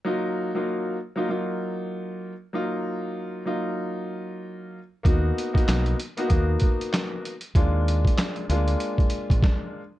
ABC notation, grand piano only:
X:1
M:4/4
L:1/16
Q:"Swing 16ths" 1/4=96
K:Ebm
V:1 name="Grand piano"
[G,B,EF]3 [G,B,EF]3 z [G,B,EF] [G,B,EF]6 z2 | [G,B,EF]6 [G,B,EF]8 z2 | [^A,=B,^D^F]3 [A,B,DF]3 z [A,B,DF] [A,B,DF]6 z2 | [A,B,=DF]6 [A,B,DF]8 z2 |]